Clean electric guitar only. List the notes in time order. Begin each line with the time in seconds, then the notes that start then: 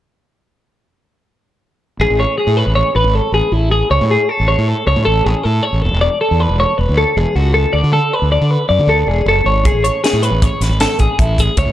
2.01 G#4
2.20 C#5
2.38 G#4
2.57 B4
2.75 C#5
2.96 B4
3.15 A4
3.34 G#4
3.53 E4
3.72 G#4
3.91 C#5
4.11 G#4
4.29 A4
4.48 C#5
4.68 A4
4.87 C#5
5.05 A4
5.25 G#4
5.44 A4
5.63 C#5
5.82 A4
6.01 D5
6.21 A4
6.40 B4
6.60 C#5
6.78 B4
6.98 A4
7.17 G#4
7.36 F#4
7.54 A4
7.73 D5
7.93 A4
8.13 B4
8.32 D5
8.51 B4
8.69 D5
8.89 A4
9.08 G#4
9.28 A4
9.46 C#5
9.66 G#4
9.84 C#5
10.04 G#4
10.23 B4
10.42 C#5
10.62 B4
10.81 A4
11.00 G#4
11.19 E4
11.40 G#4
11.59 C#5